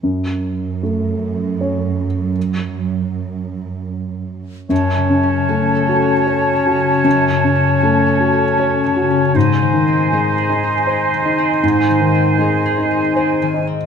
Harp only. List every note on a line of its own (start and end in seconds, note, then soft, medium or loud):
4.70 7.03 F#2 soft
4.96 6.52 C#3 soft
5.23 6.26 C#4 soft
5.49 6.00 F#4 soft
5.75 8.05 A4 soft
6.02 7.79 F#4 soft
6.27 6.78 C#4 soft
6.53 7.29 C#3 soft
6.80 7.54 C#4 soft
7.05 9.38 F#2 soft
7.30 8.83 C#3 soft
7.55 8.56 C#4 soft
7.80 8.31 F#4 soft
8.06 9.38 A4 soft
8.32 9.38 F#4 soft
8.58 9.09 C#4 soft
8.84 9.38 C#3 soft
9.10 9.39 C#4 soft
9.35 11.62 G#2 soft
9.62 11.12 D#3 soft
9.87 10.88 C4 soft
10.13 10.62 D#4 soft
10.38 12.64 G#4 soft
10.63 12.39 D#4 soft
10.89 11.37 C4 soft
11.14 11.89 D#3 soft
11.38 12.13 C4 soft
11.64 13.86 G#2 soft
11.90 13.41 D#3 soft
12.15 13.15 C4 soft
12.40 12.90 D#4 soft
12.66 13.86 G#4 soft
12.91 13.86 D#4 soft
13.16 13.66 C4 soft
13.42 13.86 D#3 soft
13.67 13.86 C4 soft